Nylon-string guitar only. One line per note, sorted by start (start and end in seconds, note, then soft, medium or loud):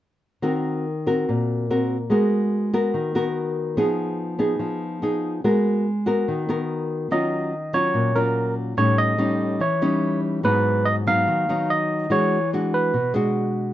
0.42 1.24 D#3 medium
0.42 0.84 C4 medium
0.42 0.85 F#4 medium
0.42 0.85 A#4 medium
1.06 1.65 C4 medium
1.06 1.66 F#4 medium
1.06 1.66 A#4 medium
1.29 2.09 A#2 medium
1.70 1.96 C4 medium
1.70 1.96 F#4 medium
1.70 1.97 A#4 medium
2.10 2.92 G#3 medium
2.10 2.70 B3 medium
2.10 2.70 F#4 medium
2.10 2.70 A#4 medium
2.73 3.12 B3 medium
2.73 3.11 F#4 medium
2.73 3.12 A#4 medium
2.94 3.75 D#3 medium
3.15 3.74 B3 medium
3.15 3.74 F#4 medium
3.15 3.74 A#4 medium
3.77 4.58 F3 medium
3.77 4.36 B3 medium
3.77 4.37 D#4 soft
3.77 4.37 G#4 medium
4.39 4.98 B3 medium
4.39 4.99 D#4 medium
4.39 4.99 G#4 medium
4.59 5.41 F3 medium
5.02 5.41 B3 medium
5.02 5.41 D#4 medium
5.02 5.41 G#4 medium
5.44 6.25 G#3 medium
5.44 5.85 B3 medium
5.44 5.86 F#4 medium
5.44 5.86 A#4 medium
6.06 6.45 B3 medium
6.06 6.45 F#4 medium
6.06 6.45 A#4 medium
6.28 7.09 D#3 medium
6.49 7.08 B3 medium
6.49 7.08 F#4 medium
6.49 7.08 A#4 medium
7.11 7.92 D#3 medium
7.11 7.52 F#3 medium
7.11 7.52 C#4 medium
7.11 7.53 F4 medium
7.73 8.12 F#3 medium
7.73 8.12 C#4 medium
7.73 8.12 F4 medium
7.94 8.75 A#2 medium
8.15 8.74 F#3 medium
8.15 8.74 C#4 medium
8.15 8.74 F4 medium
8.77 9.58 A2 medium
8.77 9.15 G3 medium
8.77 9.15 C#4 medium
8.77 9.16 D#4 medium
9.18 9.60 G3 medium
9.18 9.60 C#4 medium
9.18 9.60 D#4 medium
9.60 10.41 E3 medium
9.82 10.41 G3 medium
9.82 10.41 C#4 medium
9.82 10.41 D#4 medium
10.43 11.25 G#2 medium
10.43 11.03 F#3 medium
10.43 11.03 B3 medium
10.43 11.03 D#4 medium
11.07 11.45 F#3 medium
11.07 11.45 B3 medium
11.07 11.45 D#4 medium
11.27 12.08 D#3 medium
11.49 12.07 F#3 medium
11.49 12.07 B3 medium
11.49 12.08 D#4 medium
12.10 12.91 E3 medium
12.10 12.37 G#3 medium
12.10 12.37 D4 medium
12.10 12.37 F#4 medium
12.53 12.94 G#3 medium
12.53 12.94 D4 medium
12.53 12.94 F#4 medium
12.94 13.73 B2 medium
13.14 13.73 G#3 medium
13.14 13.73 D4 medium
13.14 13.73 F#4 medium